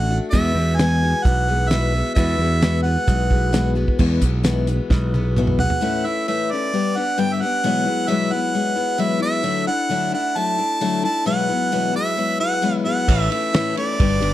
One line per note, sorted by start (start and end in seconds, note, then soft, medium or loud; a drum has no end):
0.00 0.19 A1 medium
0.00 0.11 D3 medium
0.00 0.11 A3 medium
0.00 0.10 D4 medium
0.00 0.17 F#5 loud
0.11 0.33 A3 soft
0.11 0.34 D4 soft
0.11 0.33 F#4 medium
0.31 0.52 E2 loud
0.31 0.56 E2 medium
0.31 0.56 B2 medium
0.31 0.56 E3 medium
0.31 0.56 G#3 medium
0.31 0.57 B3 medium
0.31 0.56 F#4 medium
0.31 0.78 E5 loud
0.31 kick loud
0.31 closed hi-hat medium
0.55 1.13 E2 medium
0.55 0.79 G#3 soft
0.55 0.79 B3 soft
0.55 0.79 F#4 soft
0.59 0.79 E3 soft
0.77 1.02 E2 medium
0.77 1.02 B2 medium
0.77 1.03 E3 medium
0.77 1.02 G#3 medium
0.77 1.02 B3 medium
0.77 1.01 F#4 medium
0.77 1.25 G#5 loud
0.77 snare loud
0.77 closed hi-hat medium
1.03 1.24 E3 soft
1.03 1.25 G#3 soft
1.03 1.25 B3 soft
1.03 1.25 F#4 medium
1.23 2.01 B1 medium
1.23 1.48 E3 medium
1.23 1.48 G#3 medium
1.23 1.48 B3 medium
1.23 1.47 F#4 medium
1.23 1.70 F#5 loud
1.23 kick loud
1.23 closed hi-hat medium
1.48 1.70 E3 soft
1.48 1.70 G#3 medium
1.48 1.70 B3 medium
1.48 1.71 F#4 medium
1.69 1.93 E2 medium
1.69 1.94 B2 medium
1.69 1.94 E3 medium
1.69 1.94 G#3 medium
1.69 1.93 B3 medium
1.69 1.93 F#4 medium
1.69 2.14 E5 loud
1.69 snare loud
1.69 closed hi-hat medium
1.94 2.15 E3 soft
1.94 2.16 G#3 soft
1.94 2.17 B3 soft
1.94 2.16 F#4 medium
2.15 2.39 E2 medium
2.15 2.36 E2 medium
2.15 2.39 B2 medium
2.15 2.39 E3 medium
2.15 2.40 G#3 medium
2.15 2.40 B3 medium
2.15 2.39 F#4 medium
2.15 2.80 E5 loud
2.15 kick loud
2.15 closed hi-hat medium
2.38 2.96 E2 medium
2.38 2.61 G#3 soft
2.38 2.61 B3 medium
2.38 2.61 F#4 medium
2.42 2.61 E3 soft
2.61 2.85 E2 medium
2.61 2.85 B2 medium
2.61 2.84 E3 medium
2.61 2.84 G#3 medium
2.61 2.83 B3 medium
2.61 2.83 F#4 medium
2.61 snare loud
2.61 closed hi-hat medium
2.83 3.06 E3 soft
2.83 3.07 G#3 soft
2.83 3.08 B3 medium
2.83 3.07 F#4 medium
2.83 3.71 F#5 medium
3.07 3.84 B1 medium
3.07 3.30 E3 medium
3.07 3.30 G#3 medium
3.07 3.29 B3 medium
3.07 3.29 F#4 medium
3.07 kick loud
3.07 closed hi-hat medium
3.30 3.52 E3 soft
3.30 3.52 G#3 soft
3.30 3.53 B3 medium
3.30 3.53 F#4 medium
3.30 kick medium
3.53 3.76 E2 medium
3.53 3.76 B2 medium
3.53 3.76 E3 medium
3.53 3.75 G#3 medium
3.53 3.75 B3 medium
3.53 3.74 F#4 medium
3.53 snare loud
3.53 closed hi-hat medium
3.75 3.98 E3 medium
3.75 3.98 G#3 soft
3.75 3.98 B3 medium
3.75 3.99 F#4 medium
3.88 kick medium
3.99 4.22 E2 medium
3.99 4.18 E2 medium
3.99 4.22 B2 medium
3.99 4.21 E3 medium
3.99 4.20 G#3 medium
3.99 4.20 B3 medium
3.99 4.19 F#4 medium
3.99 kick loud
3.99 crash loud
4.20 4.79 B1 medium
4.20 4.43 E3 soft
4.20 4.43 G#3 soft
4.20 4.43 B3 soft
4.20 4.44 F#4 medium
4.20 kick medium
4.20 closed hi-hat medium
4.43 4.67 E2 medium
4.43 4.67 B2 medium
4.43 4.67 E3 medium
4.43 4.67 G#3 medium
4.43 4.67 B3 medium
4.43 4.67 F#4 medium
4.43 snare loud
4.43 closed hi-hat medium
4.67 4.89 E3 soft
4.67 4.90 G#3 soft
4.67 4.91 B3 medium
4.67 4.91 F#4 medium
4.67 closed hi-hat medium
4.90 5.66 B1 medium
4.90 5.13 E3 medium
4.90 5.14 G#3 medium
4.90 5.13 B3 medium
4.90 5.13 F#4 medium
4.90 kick loud
4.90 snare medium
5.14 5.37 E3 medium
5.14 5.37 G#3 medium
5.14 5.37 B3 medium
5.14 5.36 F#4 medium
5.14 high tom medium
5.37 5.59 E2 medium
5.37 5.59 B2 medium
5.37 5.60 E3 medium
5.37 5.59 G#3 medium
5.37 5.59 B3 medium
5.37 5.58 F#4 loud
5.37 mid tom medium
5.47 mid tom medium
5.59 5.80 E3 soft
5.59 5.82 G#3 medium
5.59 5.82 B3 medium
5.59 5.82 F#4 medium
5.59 6.08 F#5 loud
5.59 floor tom loud
5.70 floor tom medium
5.81 6.04 A2 medium
5.81 6.04 E3 medium
5.81 6.05 A3 medium
5.81 6.05 C#4 medium
5.81 6.04 E4 loud
6.05 6.27 A3 soft
6.05 6.27 C#4 medium
6.05 6.27 E4 medium
6.05 6.28 E5 medium
6.28 6.50 A2 medium
6.28 6.50 E3 medium
6.28 6.50 A3 medium
6.28 6.50 C#4 medium
6.28 6.50 E4 medium
6.28 6.53 E5 medium
6.52 6.73 A3 soft
6.52 6.73 C#4 soft
6.52 6.73 E4 medium
6.52 6.98 D5 medium
6.73 6.95 G3 medium
6.73 6.96 B3 medium
6.73 6.96 D4 medium
6.73 6.95 G4 medium
6.96 7.17 G3 soft
6.96 7.18 B3 medium
6.96 7.17 D4 medium
6.96 7.17 G4 medium
6.96 7.21 F#5 loud
7.18 7.40 G2 medium
7.18 7.41 D3 medium
7.18 7.41 G3 medium
7.18 7.41 B3 medium
7.18 7.41 D4 medium
7.18 7.40 G4 medium
7.18 7.35 G5 loud
7.33 7.43 E5 medium
7.41 7.64 G3 medium
7.41 7.63 B3 soft
7.41 7.64 D4 medium
7.41 7.64 G4 medium
7.41 8.11 F#5 loud
7.63 7.86 E2 medium
7.63 7.86 B2 medium
7.63 7.86 F#3 medium
7.63 7.86 G#3 medium
7.63 7.85 B3 medium
7.63 7.84 E4 medium
7.85 8.07 F#3 soft
7.85 8.07 G#3 medium
7.85 8.08 B3 medium
7.85 8.08 E4 medium
8.08 8.31 E2 medium
8.08 8.31 B2 medium
8.08 8.31 F#3 medium
8.08 8.31 G#3 medium
8.08 8.31 B3 medium
8.08 8.30 E4 medium
8.08 8.34 E5 loud
8.32 8.53 F#3 soft
8.32 8.53 G#3 soft
8.32 8.54 B3 soft
8.32 8.54 E4 medium
8.32 9.03 F#5 loud
8.54 8.77 F#3 medium
8.54 8.76 G#3 medium
8.54 8.76 B3 medium
8.54 8.75 E4 medium
8.76 8.97 F#3 soft
8.76 8.98 G#3 medium
8.76 8.98 B3 medium
8.76 8.98 E4 medium
8.98 9.22 E2 medium
8.98 9.22 B2 medium
8.98 9.20 F#3 medium
8.98 9.20 G#3 medium
8.98 9.19 B3 medium
8.98 9.19 E4 medium
8.98 9.22 E5 loud
9.20 9.43 F#3 soft
9.20 9.43 G#3 soft
9.20 9.43 B3 medium
9.20 9.43 E4 medium
9.20 9.65 E5 loud
9.43 9.67 D3 medium
9.43 9.67 F#3 medium
9.43 9.67 A3 medium
9.43 9.66 D4 medium
9.43 9.65 E4 medium
9.67 9.89 A3 soft
9.67 9.90 D4 soft
9.67 9.90 E4 medium
9.67 10.10 F#5 loud
9.89 10.13 D3 medium
9.89 10.13 F#3 medium
9.89 10.13 A3 medium
9.89 10.12 D4 medium
9.89 10.11 E4 medium
10.12 10.35 A3 medium
10.12 10.35 D4 medium
10.12 10.35 E4 medium
10.12 10.39 F#5 loud
10.36 10.59 F#3 medium
10.36 10.58 A3 medium
10.36 10.57 D4 medium
10.36 10.57 E4 medium
10.36 11.04 A5 loud
10.58 10.80 A3 soft
10.58 10.80 D4 medium
10.58 10.81 E4 medium
10.81 11.04 D3 medium
10.81 11.04 F#3 medium
10.81 11.03 A3 medium
10.81 11.03 D4 medium
10.81 11.02 E4 medium
11.03 11.26 A3 soft
11.03 11.27 D4 medium
11.03 11.26 E4 medium
11.03 11.26 A5 loud
11.25 11.49 E2 medium
11.25 11.49 B2 medium
11.25 11.49 F#3 medium
11.25 11.48 G#3 medium
11.25 11.48 B3 medium
11.25 11.47 E4 medium
11.25 11.91 F#5 loud
11.49 11.71 F#3 soft
11.49 11.71 G#3 soft
11.49 11.72 B3 medium
11.49 11.72 E4 medium
11.72 11.95 E2 medium
11.72 11.95 B2 medium
11.72 11.94 F#3 medium
11.72 11.93 G#3 medium
11.72 11.93 B3 medium
11.72 11.92 E4 medium
11.93 12.16 F#3 soft
11.93 12.16 G#3 medium
11.93 12.16 B3 soft
11.93 12.17 E4 medium
11.93 12.38 E5 loud
12.17 12.40 F#3 medium
12.17 12.40 G#3 medium
12.17 12.39 B3 medium
12.17 12.38 E4 medium
12.40 12.62 F#3 soft
12.40 12.61 G#3 medium
12.40 12.62 B3 medium
12.40 12.62 E4 medium
12.40 12.73 F#5 loud
12.62 12.86 E2 medium
12.62 12.86 B2 medium
12.62 12.86 F#3 medium
12.62 12.85 G#3 medium
12.62 12.85 B3 medium
12.62 12.84 E4 medium
12.85 13.09 F#3 soft
12.85 13.09 G#3 medium
12.85 13.09 B3 soft
12.85 13.08 E4 medium
12.85 13.21 F#5 loud
13.08 13.28 A1 loud
13.08 13.32 A2 medium
13.08 13.32 E3 medium
13.08 13.30 A3 medium
13.08 13.30 C#4 medium
13.08 13.29 E4 medium
13.08 kick loud
13.08 crash loud
13.21 13.32 E5 loud
13.30 13.53 A3 soft
13.30 13.53 C#4 medium
13.30 13.54 E4 medium
13.30 13.77 E5 loud
13.30 ride medium
13.53 13.77 A2 medium
13.53 13.77 E3 medium
13.53 13.76 A3 medium
13.53 13.75 C#4 medium
13.53 13.74 E4 medium
13.53 snare loud
13.53 ride loud
13.76 13.99 A3 soft
13.76 13.99 C#4 soft
13.76 13.99 E4 medium
13.76 14.34 D5 loud
13.76 ride medium
13.99 14.19 G1 loud
13.99 14.21 G3 medium
13.99 14.21 B3 medium
13.99 14.20 D4 medium
13.99 14.19 G4 medium
13.99 kick loud
13.99 ride loud
14.20 14.34 G1 medium
14.20 14.34 G3 soft
14.20 14.34 B3 medium
14.20 14.34 D4 medium
14.20 14.34 G4 medium
14.20 ride medium